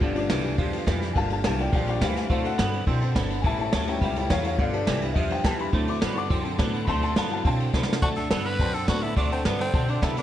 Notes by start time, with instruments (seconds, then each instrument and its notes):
0.01 upright bass G1, steel-string acoustic guitar G2 D3 F3 B3 F4 G4, upright piano D4, kick, ride
0.13 upright piano A3 B3 C#4 F4, steel-string acoustic guitar B3 F4 G4, ride
0.17 steel-string acoustic guitar F3, upright piano D4
0.29 upright bass C2, steel-string acoustic guitar G2 D3 F3 B3 F4 G4, clean electric guitar E3, snare, ride
0.43 steel-string acoustic guitar F3 B3 F4 G4, ride
0.58 upright bass E2, clean electric guitar G2, steel-string acoustic guitar F3 B3 F4 G4, kick, ride
0.72 steel-string acoustic guitar F3 B3 F4 G4, ride
0.86 upright bass F2, steel-string acoustic guitar G2 D3 F3 B3 F4 G4, clean electric guitar E3, kick, snare, ride
1.01 steel-string acoustic guitar F3 B3 F4 G4, snare, ride
1.13 upright bass G1, steel-string acoustic guitar G2 D3 F3 A#3 D4 G4, upright piano A3 A#3 F4 F5 G#5, kick, ride
1.17 upright piano A5
1.30 steel-string acoustic guitar F3 A#3 D4 G4, upright piano F5 A5, ride
1.44 upright bass C2, steel-string acoustic guitar G2 D3 F3 A#3 D4 G4, clean electric guitar E3, upright piano F5 A5, snare, ride
1.58 steel-string acoustic guitar F3 A#3 D4 G4, upright piano A3 A#3 F4 D5 G5, ride
1.72 upright bass A#1, clean electric guitar G2, steel-string acoustic guitar F3 A#3 D4 G4, upright piano D5 G5, kick, ride
1.87 steel-string acoustic guitar F3 A#3 D4 G4, upright piano D5 G5, ride
2.01 upright bass D2, steel-string acoustic guitar G2 D3 F3 A#3 D4 G4, clean electric guitar E3, upright piano C5 F5, kick, snare, ride
2.15 steel-string acoustic guitar F3 A#3 D4 G4, upright piano C5 F5, snare, ride
2.29 upright bass D2, steel-string acoustic guitar D3 F#3 C4 D4 A4, upright piano F#3 C4 E4 C5 F5, clean electric guitar A3, kick, ride
2.44 steel-string acoustic guitar C4 D4 A4, upright piano F#5, ride
2.58 upright bass G2, steel-string acoustic guitar D3 F#3 C4 D4 A4, clean electric guitar B3, snare, ride
2.72 steel-string acoustic guitar C4 D4 A4, ride
2.87 upright bass B2, clean electric guitar D3, steel-string acoustic guitar F#3 C4 D4 A4, upright piano F#3 C4 E4, kick, ride
3.01 steel-string acoustic guitar C4 D4 A4, ride
3.15 upright bass G1, steel-string acoustic guitar D3 F#3 C4 D4 A4, clean electric guitar B3, kick, snare, ride
3.29 steel-string acoustic guitar C4 D4 A4, ride
3.41 upright bass A1, steel-string acoustic guitar A2 E3 G3 C#4, upright piano G#5, kick, ride
3.46 steel-string acoustic guitar E4 A4, upright piano E5 A5
3.58 steel-string acoustic guitar G3 C#4 E4 A4, upright piano E5 A5, ride
3.72 upright bass D2, steel-string acoustic guitar A2 E3 G3 C#4 E4 A4, clean electric guitar F#3, upright piano E5 A5, snare, ride
3.87 upright piano G3 B3 C#4 E5 G5, steel-string acoustic guitar G3 C#4 E4 A4, ride
4.01 upright bass C#2, clean electric guitar A2, steel-string acoustic guitar G3 C#4 E4 A4, upright piano E5 G5, kick, ride
4.16 steel-string acoustic guitar G3 C#4 E4 A4, upright piano E5 G5, ride
4.30 upright bass E2, steel-string acoustic guitar A2 E3 G3 C#4 E4 A4, clean electric guitar F#3, upright piano C#5 F5, kick, snare, ride
4.44 steel-string acoustic guitar G3 C#4 E4 A4, upright piano C#5 F5, ride
4.58 upright bass G1, steel-string acoustic guitar G2 D3 F3 B3 D4 G4, upright piano F3 A3 B3 D5 F5, kick, ride
4.73 steel-string acoustic guitar F3 B3 D4 G4, upright piano A4 D5, ride
4.87 upright bass C2, steel-string acoustic guitar G2 D3 F3 B3 D4 G4, clean electric guitar E3, snare, ride
5.01 steel-string acoustic guitar F3 B3 D4 G4, ride
5.14 upright bass E2, clean electric guitar G2, steel-string acoustic guitar F3 B3 D4 G4, upright piano D#5, kick, ride
5.18 upright piano E5
5.30 steel-string acoustic guitar F3 B3 D4 G4, upright piano G5, ride
5.44 upright bass F2, steel-string acoustic guitar G2 D3 F3 B3 D4 G4, clean electric guitar E3, upright piano A5, kick, snare, ride
5.59 steel-string acoustic guitar F3 B3 D4 G4, upright piano B5, ride
5.72 upright bass D2, steel-string acoustic guitar D3 F#3 C4 D4 A4, upright piano E3 F#3, clean electric guitar A3, kick, ride
5.87 steel-string acoustic guitar C4 D4 A4, upright piano D6, ride
6.01 upright bass G2, steel-string acoustic guitar D3 F#3 C4 D4 A4, clean electric guitar B3, snare, ride
6.14 steel-string acoustic guitar C4 D4 A4, upright piano C#6, ride
6.18 upright piano D6
6.29 upright bass F#2, clean electric guitar D3, upright piano E3 F#3 C4, steel-string acoustic guitar F#3 C4 D4 A4, kick, ride
6.44 steel-string acoustic guitar C4 D4 A4, ride
6.58 upright bass A2, steel-string acoustic guitar D3 F#3 C4 D4 A4, clean electric guitar B3, kick, snare, ride
6.72 steel-string acoustic guitar C4 D4 A4, ride
6.85 upright bass D2, steel-string acoustic guitar D3 F#3 C4 D4 A4, clean electric guitar A3, upright piano A5 B5, kick, ride
6.89 upright piano C6
7.01 steel-string acoustic guitar C4 D4 A4, upright piano A5 C6, ride
7.16 upright bass G2, steel-string acoustic guitar D3 F#3 C4 D4 A4, clean electric guitar B3, upright piano F5 A5, snare, ride
7.30 upright piano E3 F#3 F5 A5, steel-string acoustic guitar C4 D4 A4, ride
7.45 upright bass B2, clean electric guitar D3, steel-string acoustic guitar F#3 C4 D4 A4, upright piano F5 A5, kick, ride
7.59 steel-string acoustic guitar C4 D4 A4, ride
7.74 upright bass C3, steel-string acoustic guitar D3 F#3 C4 D4 A4, clean electric guitar B3, kick, snare
7.83 snare
7.88 steel-string acoustic guitar C4 D4 A4
7.93 snare
8.02 upright bass D2, steel-string acoustic guitar D3 F#3 C4 D4 A4, clean electric guitar A3, tenor saxophone F#4, upright piano D5 F#5 A5, kick, ride
8.16 steel-string acoustic guitar C4 D4 A4, tenor saxophone A4, upright piano D5 A5, ride
8.30 upright bass G2, steel-string acoustic guitar D3 F#3 C4 D4 A4, clean electric guitar B3, tenor saxophone A4, upright piano D5 F#5 A5, snare, ride
8.45 steel-string acoustic guitar C4 D4 A4, tenor saxophone B4, upright piano D5 F#5 B5, ride
8.59 upright bass F#2, clean electric guitar D3, steel-string acoustic guitar F#3 C4 D4 A4, upright piano D5 F#5 A5, kick, ride
8.73 steel-string acoustic guitar C4 D4 A4, tenor saxophone A4, upright piano D5 A5, ride
8.88 upright bass A2, steel-string acoustic guitar D3 F#3 C4 D4 A4, clean electric guitar B3, tenor saxophone F#4, upright piano D5 F#5 A5, kick, snare, ride
9.02 steel-string acoustic guitar C4 D4 A4, tenor saxophone E4, upright piano F#5 A5, ride
9.16 upright bass D2, steel-string acoustic guitar D3 F#3 C4 D4 A4, clean electric guitar A3, tenor saxophone D4, upright piano D5 F#5 C6, kick, ride
9.31 tenor saxophone C4, steel-string acoustic guitar C4 D4 A4, upright piano D5 F#5 A5, ride
9.45 upright bass G2, steel-string acoustic guitar D3 F#3 C4 D4 A4, clean electric guitar B3, tenor saxophone B3, upright piano D5 F#5 A5, snare, ride
9.59 tenor saxophone C4, steel-string acoustic guitar C4 D4 A4, upright piano D5 A5, ride
9.73 upright bass B2, clean electric guitar D3, steel-string acoustic guitar F#3 C4 D4 A4, upright piano D5 F#5 A5, kick, ride
9.88 steel-string acoustic guitar C4 D4 A4, tenor saxophone D4, upright piano F#5 A5, ride
10.02 upright bass C3, steel-string acoustic guitar D3 F#3 C4 D4 A4, clean electric guitar B3, tenor saxophone E4, upright piano D5 F#5 A5, kick, snare, ride
10.16 steel-string acoustic guitar C4 D4 A4, tenor saxophone D4, upright piano D5 F#5 A5, snare, ride